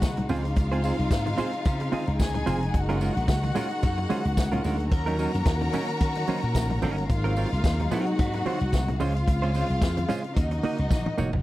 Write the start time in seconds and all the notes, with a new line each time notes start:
Already playing: C3 F#3 G#3 A#3 D#4 F#4 F#5
0.02 C2, kick, snare, closed hi-hat, tambourine, muted conga, high conga
0.17 muted clean electric guitar stroke, closed hi-hat, low conga
0.29 C#2 C#3 F3 C4 F4 G#4 C5 F5, open hi-hat, tambourine, muted conga, low conga
0.45 muted clean electric guitar stroke, closed hi-hat
0.56 C#2, muted clean electric guitar stroke, kick, closed hi-hat, tambourine, muted conga
0.72 C4 F4 G#4 C5, closed hi-hat
0.84 C4 F4 G#4 C5, open hi-hat, tambourine
0.99 C2, muted clean electric guitar stroke, closed hi-hat
1.11 G#2, muted clean electric guitar stroke, kick, snare, closed hi-hat, tambourine
1.26 muted clean electric guitar stroke, closed hi-hat, high conga
1.38 C4 F4 G#4 C5, open hi-hat, tambourine, muted conga, low conga
1.53 muted clean electric guitar stroke, closed hi-hat
1.65 C#3, muted clean electric guitar stroke, kick, closed hi-hat, tambourine
1.80 muted clean electric guitar stroke, closed hi-hat
1.92 C4 F4 G#4 D#5, open hi-hat, muted conga, high conga
2.07 C#2, muted clean electric guitar stroke, closed hi-hat
2.19 C#2 G#4 G#5, kick, snare, closed hi-hat, tambourine, high conga
2.34 muted clean electric guitar stroke, closed hi-hat, low conga
2.46 F1 C4 F4 G#4 C5, open hi-hat, tambourine, muted conga, high conga, low conga
2.62 muted clean electric guitar stroke, closed hi-hat
2.74 F#1 F#3 A#3 F#4 F#5, muted clean electric guitar stroke, kick, closed hi-hat, tambourine, muted conga
2.89 G#3 C#4 F4 A#4, closed hi-hat
3.00 G#3 C#4 F4 A#4, open hi-hat, tambourine, muted conga
3.17 A#1, closed hi-hat
3.28 C#2, muted clean electric guitar stroke, kick, snare, closed hi-hat, tambourine, muted conga
3.43 muted clean electric guitar stroke, closed hi-hat, high conga
3.55 G#3 C#4 F4 A#4, open hi-hat, tambourine, low conga
3.70 muted clean electric guitar stroke, closed hi-hat
3.83 F#2, muted clean electric guitar stroke, kick, closed hi-hat, tambourine
3.97 muted clean electric guitar stroke, closed hi-hat
4.10 G#3 C#4 F4 C5, open hi-hat, tambourine, muted conga, high conga
4.25 C#2, muted clean electric guitar stroke, closed hi-hat
4.37 C#2, muted clean electric guitar stroke, kick, snare, closed hi-hat, tambourine, muted conga, high conga
4.52 G#3 C#4 F4 A#4, closed hi-hat, low conga
4.64 D2 G#3 C#4 F4 A#4, open hi-hat, tambourine, muted conga, low conga
4.79 muted clean electric guitar stroke, closed hi-hat
4.91 D#2 D#3 C#4 F#4 A#4 A#5, muted clean electric guitar stroke, kick, closed hi-hat, muted conga
5.06 F#3 C#4 D#4 A#4, closed hi-hat
5.18 F#3 C#4 D#4 A#4, open hi-hat, tambourine, muted conga
5.34 F#2, muted clean electric guitar stroke, closed hi-hat
5.45 D#2, muted clean electric guitar stroke, kick, snare, closed hi-hat, tambourine
5.61 muted clean electric guitar stroke, closed hi-hat, high conga
5.72 F#3 C#4 D#4 A#4, open hi-hat, tambourine, muted conga, low conga
5.88 muted clean electric guitar stroke, closed hi-hat
6.01 D#3, muted clean electric guitar stroke, kick, closed hi-hat, tambourine, muted conga
6.15 muted clean electric guitar stroke, closed hi-hat
6.27 F#3 C#4 D#4 C5, open hi-hat, tambourine, high conga
6.42 A#2, muted clean electric guitar stroke, closed hi-hat
6.54 A#1, kick, snare, closed hi-hat, tambourine, muted conga, high conga
6.70 muted clean electric guitar stroke, closed hi-hat, low conga
6.82 G1 F#3 C#4 D#4 A#4, open hi-hat, tambourine, muted conga, low conga
6.98 muted clean electric guitar stroke, closed hi-hat
7.09 G#1 C3 F#3 G#3 D#4 F4 F5, muted clean electric guitar stroke, kick, closed hi-hat, tambourine
7.24 F#3 C4 F4 A#4, closed hi-hat
7.36 F#3 C4 F4 A#4, open hi-hat, tambourine, muted conga
7.52 C2, closed hi-hat
7.64 D#2, muted clean electric guitar stroke, kick, snare, closed hi-hat, tambourine
7.80 muted clean electric guitar stroke, closed hi-hat, high conga
7.91 F#3 C4 F4 F#4 A#4 F#5, open hi-hat, tambourine, low conga
8.07 muted clean electric guitar stroke, closed hi-hat
8.18 G#2, muted clean electric guitar stroke, kick, closed hi-hat, tambourine, muted conga
8.34 muted clean electric guitar stroke, closed hi-hat
8.46 F#3 C4 F4 C5, open hi-hat, high conga
8.61 C2, closed hi-hat
8.72 C2, kick, snare, closed hi-hat, tambourine, muted conga, high conga
8.88 muted clean electric guitar stroke, closed hi-hat, low conga
9.00 C#2 C#3 F3 G#3 C4 C#4 F4 C5 F5, open hi-hat, tambourine, low conga
9.16 muted clean electric guitar stroke, closed hi-hat
9.27 C#2, muted clean electric guitar stroke, kick, closed hi-hat, tambourine, muted conga
9.42 G#3 C#4 F4 C5, closed hi-hat
9.54 G#3 C#4 F4 C5, open hi-hat, tambourine, muted conga
9.69 C2, muted clean electric guitar stroke, closed hi-hat
9.81 F2, muted clean electric guitar stroke, kick, snare, closed hi-hat, tambourine, muted conga
9.97 muted clean electric guitar stroke, closed hi-hat, high conga
10.08 G#3 C#4 F4 C5, open hi-hat, tambourine, low conga
10.24 muted clean electric guitar stroke, closed hi-hat
10.36 D#2 F#3 A#3 D#4 F#4 D#5, muted clean electric guitar stroke, kick, closed hi-hat, tambourine, muted conga
10.51 muted clean electric guitar stroke, closed hi-hat
10.63 A#3 D#4 F#4 D#5, open hi-hat, muted conga, high conga
10.78 C#2, muted clean electric guitar stroke, closed hi-hat
10.91 A#1, kick, snare, tambourine, muted conga, high conga
11.06 muted clean electric guitar stroke, high tom, low conga
11.18 E1 A#3 D#4 F#4 C#5, mid tom, tambourine, high conga, low conga
11.33 F1, muted clean electric guitar stroke, floor tom